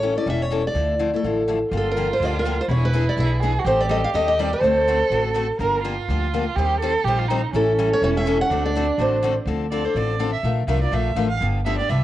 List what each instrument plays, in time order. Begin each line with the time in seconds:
Already playing: upright bass A1, steel-string acoustic guitar C#5
0.02 steel-string acoustic guitar E3 G3 C#4 E4 A4
0.15 steel-string acoustic guitar C#4 E4 A4 D5
0.26 upright bass E1, steel-string acoustic guitar E3 G3 C#4 E4 A4 E5
0.42 steel-string acoustic guitar C#5
0.51 steel-string acoustic guitar E3 G3 C#4 E4 A4
0.67 steel-string acoustic guitar D5
0.74 upright bass D2, steel-string acoustic guitar D3 F3 A3 E4
0.99 steel-string acoustic guitar D3 F3 A3 E4
1.13 steel-string acoustic guitar F3 A3 E4 A4
1.23 upright bass A1, steel-string acoustic guitar D3 F3 A3 E4
1.48 steel-string acoustic guitar D3 F3 A3 E4
1.71 upright bass G1, steel-string acoustic guitar D3 F3 A#3 D4 G4, violin F4
1.77 steel-string acoustic guitar A4
1.92 steel-string acoustic guitar A#4
1.97 steel-string acoustic guitar D3 F3 A#3 D4 G4
2.13 steel-string acoustic guitar C5
2.20 upright bass D2, steel-string acoustic guitar D3 F3 A#3 D4 G4
2.25 steel-string acoustic guitar D5
2.39 steel-string acoustic guitar A#4
2.45 steel-string acoustic guitar D3 F3 A#3 D4 G4
2.61 steel-string acoustic guitar C5
2.68 upright bass E1, steel-string acoustic guitar E3 B3 D4 G#4 C#5, violin E4
2.85 steel-string acoustic guitar B4
2.93 steel-string acoustic guitar E3 B3 D4 G#4
3.09 steel-string acoustic guitar D5
3.17 upright bass B1, steel-string acoustic guitar E3 B3 D4 G#4 E5
3.40 steel-string acoustic guitar E3 B3 D4 G#4, violin G#4
3.59 violin F#4
3.64 upright bass A1, steel-string acoustic guitar D#3 G3 C4 G4 A4 C5, violin G4
3.81 steel-string acoustic guitar D5
3.89 steel-string acoustic guitar D#3 G3 C4 G4 A4 D#5
4.04 steel-string acoustic guitar F5
4.14 upright bass D#2, steel-string acoustic guitar D#3 G3 C4 G4 A4 D#5
4.28 steel-string acoustic guitar D#5
4.39 steel-string acoustic guitar D#3 G3 C4 G4 A4 D5
4.53 steel-string acoustic guitar C5
4.60 upright bass D2, steel-string acoustic guitar D3 A3 C4 F#4, violin A4
4.64 steel-string acoustic guitar A4
4.88 steel-string acoustic guitar D3 A3 C4 F#4 A4
5.10 upright bass A1, steel-string acoustic guitar D3 A3 C4 F#4 A4
5.34 steel-string acoustic guitar D3 A3 C4 F#4 A4
5.59 upright bass G1, steel-string acoustic guitar D3 F3 A#3 D4 G4, violin A#4
5.82 steel-string acoustic guitar D3 F3 A#3 D4 G4, violin F4
6.08 upright bass D2, steel-string acoustic guitar D3 F3 A#3 D4 G4
6.34 steel-string acoustic guitar D3 F3 A#3 D4 G4
6.56 upright bass D#2, steel-string acoustic guitar D#3 G3 C4 G4 C5, violin G4
6.80 steel-string acoustic guitar D#3 G3 C4 G4 C5, violin A4
7.04 upright bass A#1, steel-string acoustic guitar D#3 G3 C4 C5, violin G4
7.08 steel-string acoustic guitar G4
7.19 violin F4
7.28 steel-string acoustic guitar D#3 G3 C4 G4 C5, violin D#4
7.53 upright bass A1, steel-string acoustic guitar E3 G3 C#4 E4 A4, violin C#4
7.79 steel-string acoustic guitar E3 G3 C#4 E4 A4
7.93 steel-string acoustic guitar C#5
8.02 upright bass E1, steel-string acoustic guitar E3 G3 C#4 E4 A4 C#5
8.17 steel-string acoustic guitar E5
8.26 steel-string acoustic guitar E3 G3 C#4 E4 A4
8.41 steel-string acoustic guitar F#5
8.50 upright bass D2, steel-string acoustic guitar D3 A3 C4 F#4 A4, violin D4
8.66 steel-string acoustic guitar D5
8.75 steel-string acoustic guitar D3 A3 C4 F#4 A4
8.98 upright bass A1, steel-string acoustic guitar D3 A3 C4 F#4 A4 C5
9.22 steel-string acoustic guitar D3 A3 C4 F#4 A4
9.45 upright bass D2, steel-string acoustic guitar D3 F3 C4 D4 A4
9.71 steel-string acoustic guitar D3 F3 C4 D4 A4, violin D5
9.84 steel-string acoustic guitar C4 D4 A4, violin C5
9.94 upright bass A1, steel-string acoustic guitar D3 F3 C4 D4 A4, violin D5
10.19 steel-string acoustic guitar D3 F3 C4 D4 A4
10.33 violin E5
10.43 upright bass A#1, steel-string acoustic guitar F3 A3 D4 F4 A#4
10.67 upright bass C2, steel-string acoustic guitar F3 A3 D4 F4 A#4, violin E5
10.82 steel-string acoustic guitar D4 F4 A#4, violin D5
10.91 upright bass A#1, steel-string acoustic guitar F3 A3 D4 F4 A#4, violin E5
11.15 upright bass A1, steel-string acoustic guitar F3 A3 D4 F4 A#4
11.30 violin F5
11.41 upright bass G1, steel-string acoustic guitar D3 F3 B3 D4 G4
11.65 steel-string acoustic guitar D3 F3 B3 D4 G4, violin E5
11.79 steel-string acoustic guitar B3 D4 G4, violin D5
11.90 upright bass C2, steel-string acoustic guitar D3 F3 B3 D4 G4, violin E5